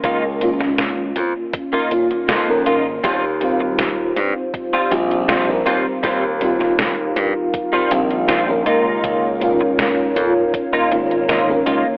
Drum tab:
HH |x-x-x-x-x-xxx-x-|x-x-x-x-x-xxx-x-|x-x-x-x-x-xxx-x-|x-x-x-x-x-xxx-x-|
SD |---oo-------o---|----o-------o---|---oo-------o---|----o-------o---|
BD |o-------o-------|o-------o-------|o-------o-------|o-------o-------|